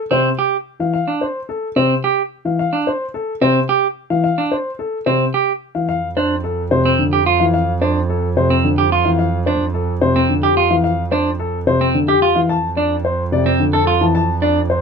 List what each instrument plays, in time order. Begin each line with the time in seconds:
0.11 grand piano C3 C5, clean electric guitar C4
0.39 clean electric guitar G4
0.80 grand piano E3 F5
0.94 grand piano F5
1.08 clean electric guitar D4
1.21 grand piano C5
1.49 grand piano A4
1.76 grand piano C3 C5, clean electric guitar C4
2.04 clean electric guitar G4
2.45 grand piano E3 F5
2.59 grand piano F5
2.73 clean electric guitar D4
2.87 grand piano C5
3.14 grand piano A4
3.41 grand piano C3 C5, clean electric guitar C4
3.69 clean electric guitar G4
4.10 grand piano E3 F5
4.24 grand piano F5
4.38 clean electric guitar D4
4.52 grand piano C5
4.79 grand piano A4
5.06 grand piano C3 C5, clean electric guitar C4
5.34 clean electric guitar G4
5.75 grand piano E3 F5
5.89 double bass F2, grand piano F5
6.17 clean electric guitar D4, grand piano C5
6.44 grand piano A4
6.71 grand piano C3 C5
6.85 clean electric guitar C4
6.99 grand piano D3
7.13 clean electric guitar G4
7.26 clean electric guitar F4
7.40 grand piano E3 F5
7.54 grand piano F5
7.82 clean electric guitar D4, grand piano C5
8.10 grand piano A4
8.37 grand piano C3 C5
8.50 clean electric guitar C4
8.64 grand piano D3
8.78 clean electric guitar G4
8.92 clean electric guitar F4
9.05 grand piano E3 F5
9.19 grand piano F5
9.46 clean electric guitar D4, grand piano C5
9.74 grand piano A4
10.01 grand piano C3 C5
10.16 clean electric guitar C4
10.29 grand piano D3
10.43 grand piano G4, clean electric guitar G4
10.57 clean electric guitar F4
10.71 grand piano E3 F5
10.84 grand piano F5
11.12 clean electric guitar D4, grand piano C5
11.39 grand piano A4
11.67 grand piano C3 C5
11.81 clean electric guitar C4
11.95 grand piano D3
12.08 grand piano G4, clean electric guitar G4
12.22 clean electric guitar F4
12.35 grand piano E3 F5
12.49 double bass F2, grand piano A5
12.77 clean electric guitar D4, grand piano D5
13.05 grand piano C5
13.32 grand piano C3 D5
13.46 clean electric guitar C4
13.59 grand piano D3
13.73 clean electric guitar A4, grand piano A4
13.87 clean electric guitar F4
14.01 grand piano E3 A5
14.15 grand piano A5
14.42 clean electric guitar D4, grand piano D5
14.70 grand piano C5